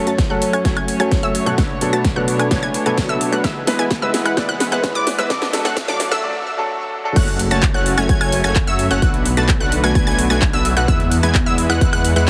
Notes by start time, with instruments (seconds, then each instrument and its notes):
Already playing: string section F#2 F#3 A3 C#4 C#5, grand piano F#3 A3 C#4 A4, riser
0.07 supersaw synth A3 C#4 F#4 C#5 A5, synth pluck A6, closed hi-hat, cabasa
0.18 kick, snare, closed hi-hat, cabasa
0.29 grand piano F#3 A3 C#4 A4, supersaw synth A3 C#4 F#4 C#5 F#5, synth pluck F#6
0.42 open hi-hat, cabasa
0.53 supersaw synth A3 C#4 F#4 C#5 G#5, synth pluck G#6, closed hi-hat, cabasa, high woodblock
0.64 grand piano F#3 A3 C#4 C#5, supersaw synth A3 C#4 F#4 G#5, synth pluck G#6, kick, snare, closed hi-hat, cabasa
0.77 supersaw synth A3 C#4 F#4 C#5 G#5, synth pluck G#6, closed hi-hat, high woodblock
0.88 open hi-hat, cabasa
0.99 grand piano F#3 A3 C#4 A4, supersaw synth A3 C#4 F#4 C#5 G#5, synth pluck G#6, closed hi-hat, cabasa
1.11 kick, snare, closed hi-hat, cabasa
1.23 supersaw synth A3 C#4 F#4 C#5 E5, synth pluck E6, closed hi-hat
1.35 open hi-hat, cabasa
1.46 grand piano B2 F#3 A3 C#4 A4, supersaw synth A3 C#4 F#4 C#5 F#5, synth pluck F#6, closed hi-hat, cabasa
1.58 string section B2 D4, supersaw synth A3 D4 F#4 B4 F#5, synth pluck F#6, kick, snare, closed hi-hat, cabasa
1.81 grand piano B2 F#3 B3 D4 A4, open hi-hat, cabasa
1.93 supersaw synth A3 D4 F#4 B4 A5, synth pluck A6, closed hi-hat, cabasa
2.05 kick, snare, closed hi-hat, cabasa
2.16 grand piano B2 F#3 B3 D4 A4, supersaw synth A3 D4 F#4 B4 F#5, synth pluck F#6
2.28 open hi-hat, cabasa
2.39 supersaw synth A3 D4 F#4 B4 G#5, synth pluck G#6, closed hi-hat, cabasa, high woodblock
2.51 grand piano B2 F#3 B3 D4 C#5, supersaw synth A3 D4 F#4 B4 G#5, synth pluck G#6, kick, snare, closed hi-hat, cabasa
2.63 supersaw synth A3 D4 F#4 B4 G#5, synth pluck G#6, closed hi-hat
2.74 open hi-hat, cabasa
2.85 grand piano B2 F#3 B3 D4 A4, supersaw synth A3 D4 F#4 B4 G#5, synth pluck G#6, closed hi-hat, cabasa
2.98 kick, snare, closed hi-hat, cabasa
3.09 supersaw synth A3 D4 F#4 B4 E5, synth pluck E6, closed hi-hat
3.21 open hi-hat, cabasa
3.32 grand piano F#3 B3 D4 A4, supersaw synth A3 D4 F#4 B4 F#5, synth pluck F#6, closed hi-hat, cabasa
3.44 string section E2 E3 G#3 B3 B4, supersaw synth G#3 B3 E4 B4 E5, synth pluck E6, kick, snare, closed hi-hat, cabasa
3.67 grand piano G#3 B3 E4 B4, snare, open hi-hat, cabasa
3.79 supersaw synth G#3 B3 E4 B4 G#5, synth pluck G#6, closed hi-hat, cabasa
3.91 kick, snare, closed hi-hat, cabasa
4.02 grand piano G#3 B3 E4 B4, supersaw synth G#3 B3 E4 B4 E5, synth pluck E6
4.14 snare, open hi-hat, cabasa
4.25 supersaw synth G#3 B3 E4 B4 F#5, synth pluck F#6, closed hi-hat, cabasa, high woodblock
4.37 grand piano G#3 B3 E4 D5, supersaw synth G#3 B3 E4 B4 F#5, synth pluck F#6, kick, snare, closed hi-hat, cabasa
4.49 supersaw synth G#3 B3 E4 B4 F#5, synth pluck F#6, closed hi-hat, high woodblock
4.60 snare, open hi-hat, cabasa
4.71 grand piano G#3 B3 E4 B4, supersaw synth G#3 B3 E4 B4 F#5, synth pluck F#6, closed hi-hat, cabasa
4.84 kick, snare, closed hi-hat, cabasa
4.95 supersaw synth G#3 B3 E4 B4 D5, synth pluck D6, closed hi-hat
5.07 snare, open hi-hat, cabasa
5.18 grand piano G#3 B3 E4 B4, supersaw synth G#3 B3 E4 B4 E5, synth pluck E6, closed hi-hat, cabasa
5.30 string section D2 D3 F#3 A3 A4, supersaw synth F#3 A3 D4 A4 D5, synth pluck D6, kick, snare, closed hi-hat, cabasa
5.42 snare, closed hi-hat
5.53 grand piano F#3 A3 D4 A4, snare, open hi-hat, cabasa
5.65 supersaw synth F#3 A3 D4 A4 F#5, synth pluck F#6, snare, closed hi-hat, cabasa
5.77 kick, snare, closed hi-hat, cabasa
5.88 grand piano F#3 A3 D4 A4, supersaw synth F#3 A3 D4 A4 D5, synth pluck D6, snare
6.00 snare, open hi-hat, cabasa
6.12 supersaw synth F#3 A3 D4 A4 E5, synth pluck E6, snare, closed hi-hat, cabasa, high woodblock
6.23 grand piano F#3 A3 D4 D5
6.57 grand piano F#3 A3 D4 A4
7.04 grand piano F#3 A3 D4 A4
7.16 detuned saw bass F#1, string section C#3 F#3 A3, supersaw synth A3 C#4 F#4 C#5 F#5, synth pluck F#6, kick, closed hi-hat, crash, cabasa
7.28 closed hi-hat
7.39 open hi-hat, cabasa
7.51 detuned saw bass F#1, supersaw synth A3 C#4 F#4 C#5 A5, synth pluck A6, closed hi-hat, cabasa
7.63 kick, clap, closed hi-hat, cabasa
7.74 detuned saw bass F#1, supersaw synth A3 C#4 F#4 C#5 F#5, synth pluck F#6
7.86 open hi-hat, cabasa
7.98 detuned saw bass F#1, supersaw synth A3 C#4 F#4 C#5 G#5, synth pluck G#6, closed hi-hat, cabasa, high woodblock
8.09 detuned saw bass F#1, supersaw synth A3 C#4 F#4 C#5 G#5, synth pluck G#6, kick, closed hi-hat, cabasa
8.21 detuned saw bass F#1, supersaw synth A3 C#4 F#4 C#5 G#5, synth pluck G#6, closed hi-hat, high woodblock
8.32 open hi-hat, cabasa
8.44 detuned saw bass F#1, supersaw synth A3 C#4 F#4 C#5 G#5, synth pluck G#6, closed hi-hat, cabasa
8.56 kick, clap, closed hi-hat, cabasa
8.67 detuned saw bass F#2, supersaw synth A3 C#4 F#4 C#5 E5, synth pluck E6, closed hi-hat
8.79 open hi-hat, cabasa
8.91 detuned saw bass F#1, supersaw synth A3 C#4 F#4 C#5 F#5, synth pluck F#6, closed hi-hat, cabasa
9.02 detuned saw bass B1, string section D3 A3 B3, supersaw synth A3 D4 F#4 B4 F#5, synth pluck F#6, kick, closed hi-hat, cabasa
9.14 closed hi-hat
9.25 open hi-hat, cabasa
9.37 detuned saw bass B1, supersaw synth A3 D4 F#4 B4 A5, synth pluck A6, closed hi-hat, cabasa
9.49 kick, clap, closed hi-hat, cabasa
9.60 detuned saw bass B1, supersaw synth A3 D4 F#4 B4 F#5, synth pluck F#6
9.72 open hi-hat, cabasa
9.84 detuned saw bass B1, supersaw synth A3 D4 F#4 B4 G#5, synth pluck G#6, closed hi-hat, cabasa, high woodblock
9.95 detuned saw bass B1, supersaw synth G#5, synth pluck G#6, kick, closed hi-hat, cabasa
10.07 detuned saw bass B1, supersaw synth A3 D4 F#4 B4 G#5, synth pluck G#6, closed hi-hat
10.19 open hi-hat, cabasa
10.30 detuned saw bass B1, supersaw synth A3 D4 F#4 B4 G#5, synth pluck G#6, closed hi-hat, cabasa
10.42 kick, clap, closed hi-hat, cabasa
10.53 detuned saw bass B1, supersaw synth A3 D4 F#4 B4 E5, synth pluck E6, closed hi-hat
10.65 open hi-hat, cabasa
10.77 detuned saw bass B1, supersaw synth A3 D4 F#4 B4 F#5, synth pluck F#6, closed hi-hat, cabasa
10.88 detuned saw bass E2, string section E3 G#3, supersaw synth G#3 B3 E4 B4 E5, synth pluck E6, kick, closed hi-hat, cabasa
11.00 closed hi-hat
11.12 open hi-hat, cabasa
11.23 detuned saw bass E2, supersaw synth G#3 B3 E4 B4 G#5, synth pluck G#6, closed hi-hat, cabasa
11.35 kick, clap, closed hi-hat, cabasa
11.46 detuned saw bass E2, supersaw synth G#3 B3 E4 B4 E5, synth pluck E6
11.58 open hi-hat, cabasa
11.70 detuned saw bass E2, supersaw synth G#3 B3 E4 B4 F#5, synth pluck F#6, closed hi-hat, cabasa, high woodblock
11.81 detuned saw bass E2, supersaw synth G#3 B3 E4 B4 F#5, synth pluck F#6, kick, closed hi-hat, cabasa
11.93 detuned saw bass E2, supersaw synth G#3 B3 E4 B4 F#5, synth pluck F#6, closed hi-hat, high woodblock
12.05 open hi-hat, cabasa
12.16 detuned saw bass E2, supersaw synth G#3 B3 E4 B4 F#5, synth pluck F#6, closed hi-hat, cabasa